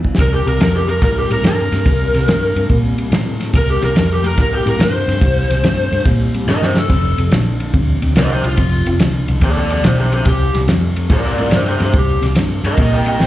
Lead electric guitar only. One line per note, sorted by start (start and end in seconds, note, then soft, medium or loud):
0.20 0.33 A#4 medium
0.34 0.47 G4 medium
0.48 0.61 A#4 medium
0.62 0.75 A#4 medium
0.76 0.89 G4 medium
0.89 1.02 A#4 medium
1.03 1.18 A#4 medium
1.18 1.31 G4 medium
1.32 1.45 A#4 medium
1.46 2.67 A#4 loud
3.57 3.70 A#4 loud
3.70 3.83 G4 medium
3.84 3.97 A#4 medium
3.98 4.12 A#4 medium
4.12 4.26 G4 medium
4.26 4.39 A#4 medium
4.41 4.53 A#4 medium
4.54 4.68 G4 medium
4.68 4.81 A#4 medium
4.82 6.03 C5 loud
6.49 6.63 A#4 medium
6.49 6.64 D#5 loud
6.63 6.76 G4 medium
6.63 6.78 C5 medium
6.78 7.18 A4 medium
8.17 8.31 C5 medium
8.17 8.31 D#5 loud
8.31 8.44 G4 medium
8.31 8.44 C5 medium
8.46 8.86 F4 medium
9.43 9.57 A4 medium
9.43 9.56 D5 medium
9.58 9.70 A4 medium
9.58 9.71 D5 medium
9.72 9.84 A4 medium
9.72 9.85 D5 loud
9.84 9.98 G4 medium
9.84 9.98 C5 medium
9.99 10.12 G4 medium
9.99 10.12 C5 medium
10.13 10.26 G4 medium
10.13 10.27 C5 medium
10.28 10.54 G4 loud
11.11 11.24 A#4 medium
11.11 11.25 D5 medium
11.26 11.38 A#4 medium
11.26 11.39 D5 medium
11.40 11.54 A#4 medium
11.40 11.55 D5 medium
11.54 11.67 G4 medium
11.54 11.67 C5 medium
11.68 11.80 G4 medium
11.68 11.81 C5 medium
11.82 11.94 G4 medium
11.82 11.95 C5 medium
11.97 12.23 G4 loud
12.66 12.78 A#4 medium
12.66 12.79 D#5 medium
12.80 12.92 A#4 medium
12.80 12.93 D#5 medium
12.94 13.06 D#5 medium
12.94 13.07 G5 medium
13.09 13.20 D#5 medium
13.09 13.21 G5 loud
13.22 13.27 C5 loud